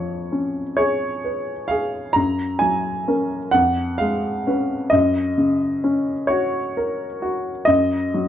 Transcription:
0.00 2.13 F2 soft
0.00 0.61 F3 soft
0.00 0.75 C#5 medium
0.32 1.07 C#4 soft
0.77 1.53 G#4 soft
0.77 1.70 C#5 medium
1.25 1.98 B4 soft
1.68 2.17 G#4 soft
1.68 2.15 F5 medium
2.13 3.51 F#2 medium
2.13 2.61 A#5 medium
2.59 3.36 F#3 soft
2.59 3.54 G#5 medium
3.08 3.51 C#4 soft
3.08 3.51 A#4 soft
3.51 4.88 F2 medium
3.51 3.99 F#5 medium
3.98 4.74 G#3 soft
3.98 4.91 F5 medium
4.47 4.89 C#4 soft
4.47 4.89 B4 soft
4.90 7.64 F#2 medium
4.90 6.29 D#5 medium
5.38 6.11 C#3 soft
5.84 6.58 C#4 soft
6.27 7.04 F#4 medium
6.27 6.75 C#5 medium
6.77 7.50 A#4 soft
7.22 7.68 F#4 medium
7.65 8.28 F#2 medium
7.65 8.28 D#5 medium
8.14 8.28 F#3 soft

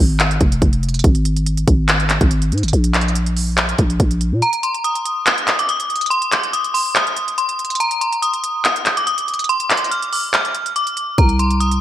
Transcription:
0.00 0.39 G#1 loud
0.20 clap loud
0.20 closed hi-hat medium
0.31 closed hi-hat medium
0.41 0.61 F1 loud
0.41 kick medium
0.41 closed hi-hat medium
0.52 closed hi-hat medium
0.62 1.02 F1 loud
0.62 kick medium
0.62 closed hi-hat medium
0.73 closed hi-hat medium
0.83 closed hi-hat soft
0.89 closed hi-hat medium
0.94 closed hi-hat medium
0.99 closed hi-hat medium
1.04 1.65 G#1 loud
1.04 kick loud
1.04 closed hi-hat medium
1.15 closed hi-hat medium
1.25 closed hi-hat medium
1.36 closed hi-hat medium
1.46 closed hi-hat medium
1.57 closed hi-hat medium
1.68 2.19 G#1 loud
1.68 kick loud
1.68 closed hi-hat medium
1.89 clap loud
1.89 closed hi-hat medium
2.00 closed hi-hat soft
2.10 clap medium
2.10 closed hi-hat medium
2.21 2.53 G#1 loud
2.21 kick loud
2.21 closed hi-hat medium
2.31 closed hi-hat medium
2.42 closed hi-hat medium
2.52 2.65 G#2 loud
2.52 closed hi-hat soft
2.58 closed hi-hat medium
2.63 2.73 G#1 loud
2.63 closed hi-hat medium
2.68 closed hi-hat medium
2.73 3.75 A#1 loud
2.73 closed hi-hat medium
2.84 closed hi-hat medium
2.94 clap medium
2.94 closed hi-hat medium
3.01 closed hi-hat medium
3.08 closed hi-hat soft
3.15 closed hi-hat medium
3.26 closed hi-hat medium
3.37 open hi-hat medium
3.58 clap loud
3.58 closed hi-hat medium
3.69 closed hi-hat medium
3.78 3.99 A#1 loud
3.78 kick medium
3.78 closed hi-hat medium
3.90 closed hi-hat medium
4.00 4.34 A#1 loud
4.00 kick loud
4.00 closed hi-hat medium
4.11 closed hi-hat medium
4.21 closed hi-hat medium
4.32 4.42 A#2 loud
4.42 4.59 A#5 loud
4.42 closed hi-hat medium
4.53 closed hi-hat medium
4.63 4.81 C6 medium
4.63 closed hi-hat medium
4.74 closed hi-hat medium
4.84 5.24 D#6 medium
4.84 closed hi-hat medium
4.95 closed hi-hat medium
5.06 closed hi-hat medium
5.26 5.57 D#6 medium
5.26 clap loud
5.26 closed hi-hat medium
5.38 closed hi-hat medium
5.47 clap medium
5.47 closed hi-hat medium
5.59 5.67 D6 medium
5.59 closed hi-hat medium
5.69 6.09 D#6 medium
5.69 closed hi-hat medium
5.80 closed hi-hat medium
5.90 closed hi-hat soft
5.96 closed hi-hat medium
6.01 closed hi-hat medium
6.06 closed hi-hat medium
6.10 6.28 C6 loud
6.10 closed hi-hat medium
6.22 closed hi-hat medium
6.32 6.49 D6 medium
6.32 clap medium
6.32 closed hi-hat medium
6.43 closed hi-hat medium
6.53 6.70 D#6 medium
6.53 closed hi-hat medium
6.64 closed hi-hat medium
6.74 6.91 C6 medium
6.74 open hi-hat medium
6.96 7.35 D#6 medium
6.96 clap loud
6.96 closed hi-hat medium
7.07 closed hi-hat medium
7.17 closed hi-hat medium
7.28 closed hi-hat medium
7.38 7.78 C6 medium
7.38 closed hi-hat medium
7.49 closed hi-hat medium
7.59 closed hi-hat soft
7.65 closed hi-hat medium
7.70 closed hi-hat medium
7.75 closed hi-hat medium
7.80 7.97 A#5 loud
7.80 closed hi-hat medium
7.91 closed hi-hat medium
8.01 8.18 C6 medium
8.01 closed hi-hat medium
8.13 closed hi-hat medium
8.22 8.62 D#6 medium
8.22 closed hi-hat medium
8.34 closed hi-hat medium
8.44 closed hi-hat medium
8.65 8.95 D#6 medium
8.65 clap loud
8.65 closed hi-hat medium
8.76 closed hi-hat medium
8.86 clap medium
8.86 closed hi-hat medium
8.97 9.05 D6 medium
8.97 closed hi-hat medium
9.07 9.47 D#6 medium
9.07 closed hi-hat medium
9.18 closed hi-hat medium
9.28 closed hi-hat soft
9.34 closed hi-hat medium
9.39 closed hi-hat medium
9.44 closed hi-hat medium
9.49 9.66 C6 loud
9.49 closed hi-hat medium
9.60 closed hi-hat medium
9.70 9.87 D6 medium
9.70 clap medium
9.70 closed hi-hat medium
9.77 closed hi-hat medium
9.84 closed hi-hat soft
9.91 10.09 F6 medium
9.91 closed hi-hat medium
10.03 closed hi-hat medium
10.13 10.30 D6 medium
10.13 open hi-hat medium
10.34 10.73 F6 medium
10.34 clap loud
10.34 closed hi-hat medium
10.45 closed hi-hat medium
10.55 closed hi-hat medium
10.66 closed hi-hat medium
10.76 11.16 D6 medium
10.76 closed hi-hat medium
10.87 closed hi-hat medium
10.97 closed hi-hat medium
11.18 11.79 C2 loud
11.18 11.36 A#5 loud
11.18 kick loud
11.18 closed hi-hat medium
11.29 closed hi-hat medium
11.39 11.57 C6 medium
11.39 closed hi-hat medium
11.51 closed hi-hat medium
11.60 11.81 D#6 medium
11.60 closed hi-hat medium
11.72 closed hi-hat medium

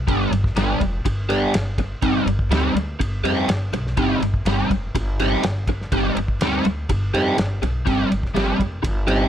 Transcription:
0.07 0.27 G1 medium
0.07 0.31 G3 medium
0.07 0.32 B3 medium
0.07 0.31 D4 medium
0.07 0.31 G4 medium
0.07 kick loud
0.07 ride medium
0.31 0.51 G1 medium
0.31 muted overdriven electric guitar stroke medium
0.31 ride medium
0.44 kick medium
0.44 snare soft
0.55 0.75 G1 medium
0.55 0.80 G3 medium
0.55 0.80 B3 medium
0.55 0.80 D4 medium
0.55 0.79 G4 loud
0.55 snare loud
0.55 ride loud
0.80 1.00 F1 loud
0.80 muted overdriven electric guitar stroke soft
0.80 kick medium
0.80 ride medium
1.05 1.44 G1 medium
1.05 muted overdriven electric guitar stroke soft
1.05 kick medium
1.05 ride loud
1.29 1.53 G3 medium
1.29 1.53 B3 medium
1.29 1.53 D4 medium
1.29 1.53 G4 medium
1.29 snare soft
1.29 ride medium
1.53 1.93 G1 medium
1.53 muted overdriven electric guitar stroke soft
1.53 snare loud
1.53 ride loud
1.78 muted overdriven electric guitar stroke soft
1.78 kick medium
1.78 ride medium
2.02 2.22 G1 medium
2.02 2.27 G3 medium
2.02 2.27 C4 medium
2.02 2.26 D#4 medium
2.02 2.26 G4 medium
2.02 kick medium
2.02 ride medium
2.26 2.46 G1 medium
2.26 muted overdriven electric guitar stroke soft
2.26 ride medium
2.39 kick medium
2.49 2.70 D2 medium
2.49 2.75 G3 medium
2.49 2.75 C4 medium
2.49 2.75 D#4 medium
2.49 2.74 G4 medium
2.49 snare loud
2.49 ride medium
2.74 2.94 D2 medium
2.74 muted overdriven electric guitar stroke soft
2.74 ride medium
3.00 3.20 G1 medium
3.00 muted overdriven electric guitar stroke soft
3.00 kick medium
3.00 ride medium
3.23 3.43 F2 medium
3.23 3.48 G3 medium
3.23 3.48 C4 medium
3.23 3.48 D#4 medium
3.23 3.48 G4 loud
3.23 ride medium
3.48 3.68 G1 medium
3.48 muted overdriven electric guitar stroke soft
3.48 snare loud
3.48 ride loud
3.73 3.92 B1 medium
3.73 muted overdriven electric guitar stroke soft
3.73 ride medium
3.87 snare soft
3.97 4.17 G1 medium
3.97 4.21 G3 medium
3.97 4.21 C4 medium
3.97 4.21 D#4 medium
3.97 4.21 G4 loud
3.97 kick loud
3.97 ride medium
4.20 4.40 G1 medium
4.20 muted overdriven electric guitar stroke medium
4.20 ride medium
4.34 kick medium
4.45 4.65 G1 medium
4.45 4.70 G3 medium
4.45 4.70 C4 medium
4.45 4.69 D#4 medium
4.45 4.69 G4 loud
4.45 snare loud
4.45 ride medium
4.70 4.90 F1 medium
4.70 muted overdriven electric guitar stroke medium
4.70 kick medium
4.70 ride medium
4.95 5.34 G1 medium
4.95 muted overdriven electric guitar stroke soft
4.95 kick medium
4.95 ride loud
5.20 5.44 G3 medium
5.20 5.44 C4 medium
5.20 5.44 D#4 medium
5.20 5.43 G4 loud
5.20 snare soft
5.20 ride medium
5.43 5.82 G1 medium
5.43 muted overdriven electric guitar stroke soft
5.43 snare loud
5.43 ride loud
5.67 muted overdriven electric guitar stroke soft
5.67 kick medium
5.67 ride medium
5.81 snare soft
5.92 6.12 G1 medium
5.92 6.16 G3 medium
5.92 6.16 C4 medium
5.92 6.16 D#4 medium
5.92 6.17 G4 medium
5.92 kick medium
5.92 ride medium
6.16 6.35 G1 medium
6.16 muted overdriven electric guitar stroke medium
6.16 ride medium
6.28 kick medium
6.39 6.59 D2 medium
6.39 6.65 G3 medium
6.39 6.65 C4 medium
6.39 6.65 D#4 loud
6.39 6.65 G4 loud
6.39 snare loud
6.39 ride medium
6.64 6.84 D2 loud
6.64 muted overdriven electric guitar stroke medium
6.64 ride medium
6.89 7.09 G1 loud
6.89 muted overdriven electric guitar stroke soft
6.89 kick medium
6.89 ride loud
7.14 7.33 F2 medium
7.14 7.36 G3 medium
7.14 7.37 C4 medium
7.14 7.37 D#4 medium
7.14 7.37 G4 loud
7.14 ride medium
7.37 7.57 G1 medium
7.37 muted overdriven electric guitar stroke soft
7.37 snare loud
7.37 ride medium
7.62 7.81 B1 medium
7.62 muted overdriven electric guitar stroke soft
7.62 ride medium
7.85 8.06 G1 medium
7.85 8.10 G3 medium
7.85 8.09 C4 medium
7.85 8.09 D#4 medium
7.85 8.08 G4 loud
7.85 kick loud
7.85 ride medium
8.10 8.31 G1 medium
8.10 muted overdriven electric guitar stroke soft
8.10 ride medium
8.23 kick medium
8.23 snare soft
8.34 8.54 G1 medium
8.34 8.59 G3 medium
8.34 8.58 C4 medium
8.34 8.58 D#4 loud
8.34 8.58 G4 loud
8.34 snare loud
8.34 ride medium
8.59 8.79 F1 medium
8.59 muted overdriven electric guitar stroke medium
8.59 kick medium
8.59 ride medium
8.82 9.23 G1 medium
8.82 muted overdriven electric guitar stroke soft
8.82 kick medium
8.82 ride medium
9.07 9.28 G3 medium
9.07 9.28 C4 medium
9.07 9.28 D#4 medium
9.07 9.28 G4 loud
9.07 ride medium

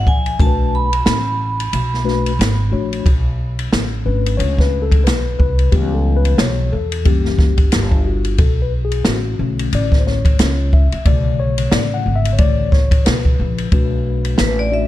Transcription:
0.07 0.38 A#1 medium
0.07 0.38 G#5 loud
0.07 kick medium
0.26 ride soft
0.39 1.03 B1 medium
0.39 0.88 A3 medium
0.39 0.89 D4 medium
0.39 0.89 F#4 medium
0.39 0.48 A#4 medium
0.39 0.75 A5 loud
0.39 kick loud
0.39 ride medium
0.47 0.92 B4 medium
0.75 2.70 B5 medium
0.93 ride medium
1.06 1.70 A1 medium
1.06 snare loud
1.06 hi-hat pedal soft
1.06 ride medium
1.60 ride medium
1.73 2.36 B1 medium
1.73 ride medium
1.94 snare soft
2.05 2.31 A3 medium
2.05 2.31 D4 medium
2.05 2.31 F#4 medium
2.05 2.31 B4 medium
2.05 snare soft
2.26 ride medium
2.39 2.71 G#1 loud
2.39 snare loud
2.39 hi-hat pedal medium
2.39 ride medium
2.72 3.04 A#1 medium
2.72 3.05 A3 medium
2.72 3.06 D4 medium
2.72 3.06 F#4 medium
2.72 3.06 C#5 medium
2.93 ride medium
3.06 3.69 B1 medium
3.06 kick loud
3.06 ride medium
3.59 ride medium
3.73 4.04 A1 medium
3.73 snare loud
3.73 hi-hat pedal soft
3.73 ride medium
4.05 4.38 G#1 medium
4.05 5.02 A3 soft
4.05 5.02 C#4 medium
4.05 5.02 D4 soft
4.05 4.40 B4 medium
4.26 ride medium
4.37 5.06 C#2 loud
4.37 4.61 C#5 loud
4.37 ride medium
4.58 4.84 B4 loud
4.58 kick medium
4.58 snare soft
4.82 5.06 A4 loud
4.92 kick medium
4.92 ride medium
5.04 5.38 B1 medium
5.04 5.38 B4 medium
5.04 snare loud
5.04 hi-hat pedal soft
5.04 ride medium
5.39 5.71 C2 medium
5.39 5.74 B4 medium
5.39 kick medium
5.59 ride soft
5.72 6.36 C#2 loud
5.72 6.68 E3 medium
5.72 6.68 G3 soft
5.72 6.69 B3 medium
5.72 5.93 G4 medium
5.72 kick loud
5.72 ride medium
5.94 6.15 A4 medium
6.17 6.38 B4 loud
6.25 ride medium
6.38 6.71 B1 loud
6.38 6.74 C#5 medium
6.38 snare loud
6.38 hi-hat pedal soft
6.38 ride medium
6.72 7.04 E2 medium
6.72 7.07 A4 medium
6.92 ride medium
7.05 7.69 F#1 medium
7.05 7.52 E3 medium
7.05 7.52 G3 medium
7.05 7.53 A#3 medium
7.05 8.09 G4 medium
7.05 kick medium
7.05 ride medium
7.25 snare soft
7.39 kick medium
7.39 snare soft
7.58 kick medium
7.58 ride medium
7.72 8.36 G1 medium
7.72 snare loud
7.72 hi-hat pedal medium
7.72 ride medium
7.92 kick medium
8.06 8.40 F#4 medium
8.24 ride soft
8.38 9.02 B1 medium
8.38 8.60 A4 medium
8.38 kick loud
8.38 ride medium
8.62 8.72 B4 medium
8.85 9.07 G#4 medium
8.91 ride medium
9.05 9.38 A1 medium
9.05 9.38 F#4 medium
9.05 snare loud
9.05 hi-hat pedal soft
9.05 ride medium
9.39 9.71 B1 medium
9.39 10.35 D3 soft
9.39 10.36 A3 medium
9.39 10.36 C#4 medium
9.59 ride medium
9.73 10.36 A1 medium
9.73 10.02 D5 medium
9.73 ride medium
9.92 kick medium
9.92 snare soft
9.99 10.06 C5 medium
10.07 10.75 C#5 medium
10.07 snare soft
10.25 kick medium
10.25 ride medium
10.39 10.90 C#2 medium
10.39 snare loud
10.39 hi-hat pedal medium
10.39 ride medium
10.73 11.07 E5 medium
10.73 kick medium
10.92 muted upright bass stroke soft
10.92 ride medium
11.05 11.69 B1 loud
11.05 13.69 C#3 medium
11.05 12.37 D3 medium
11.05 12.37 A3 soft
11.05 11.41 D5 medium
11.05 kick medium
11.05 ride medium
11.40 11.74 C#5 loud
11.58 ride medium
11.72 12.04 A1 medium
11.72 11.95 D5 medium
11.72 snare loud
11.72 hi-hat pedal soft
11.72 ride medium
11.94 12.17 F#5 medium
12.06 12.38 G#1 medium
12.16 12.33 E5 loud
12.25 ride medium
12.33 12.38 C#5 medium
12.38 13.03 A1 medium
12.38 12.69 D3 medium
12.38 12.69 A3 medium
12.38 12.69 C#5 medium
12.38 12.70 D5 loud
12.38 kick loud
12.38 ride medium
12.72 13.07 C#5 medium
12.72 kick medium
12.72 snare soft
12.91 kick medium
12.91 ride medium
13.05 13.38 B1 medium
13.05 13.68 B4 medium
13.05 snare loud
13.05 hi-hat pedal medium
13.05 ride medium
13.25 kick medium
13.40 13.71 A#1 medium
13.58 ride medium
13.72 14.36 B1 medium
13.72 14.67 A3 medium
13.72 14.67 D4 medium
13.72 14.68 F#4 medium
13.72 14.68 B4 medium
13.72 kick medium
13.72 ride medium
14.25 ride medium
14.38 14.88 A1 medium
14.38 14.61 B4 medium
14.38 snare loud
14.38 hi-hat pedal soft
14.38 ride medium
14.59 14.73 D5 medium
14.71 14.88 A3 medium
14.71 14.88 D4 medium
14.71 14.88 F#4 medium
14.71 14.88 D5 medium
14.71 14.88 E5 medium

